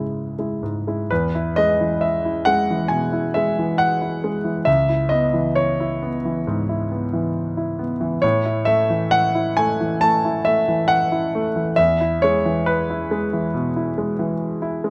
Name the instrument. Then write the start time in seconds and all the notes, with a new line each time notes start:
grand piano
Already playing: G#2 C#3 G#3 E4 C#5
0.39 G#3 E4
0.63 G#2
0.87 G#3 E4
1.11 E2 B4
1.35 E4
1.56 G#3 D#5
1.81 E3
2.01 E5
2.25 E4
2.45 G#3 F#5
2.70 E3
2.88 B2 G#5
3.13 E4
3.34 G#3 E5
3.59 E3
3.78 F#5
4.01 E4
4.24 G#3
4.44 E3
4.65 C#2 E5
4.89 E4
5.09 B3 D#5
5.34 E3
5.55 C#5
5.80 E4
6.02 B3
6.25 E3
6.47 G#2
6.69 E4
6.91 B3
7.13 E3
7.57 E4
7.79 B3
8.01 E3
8.22 A2 C#5
8.46 E4
8.65 A3 E5
8.90 E3
9.11 F#5
9.35 E4
9.57 A3 G#5
9.81 E3
10.01 A3 A5
10.25 E4
10.45 A3 E5
10.68 E3
10.88 F#5
11.12 E4
11.35 A3
11.56 E3
11.76 E2 E5
12.01 E4
12.22 G#3 C#5
12.46 E3
12.66 B4
12.90 E4
13.11 G#3
13.33 E3
13.54 B2
13.76 E4
13.98 G#3
14.19 E3
14.62 E4
14.84 G#3